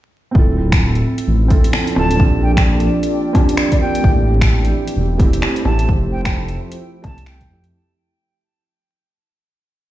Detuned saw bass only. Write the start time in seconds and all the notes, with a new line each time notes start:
0.35 D1
1.27 A1
1.97 D1
2.20 A#1
4.04 A1
4.96 E1
5.65 A1
5.89 F1
7.04 C2
7.50 F2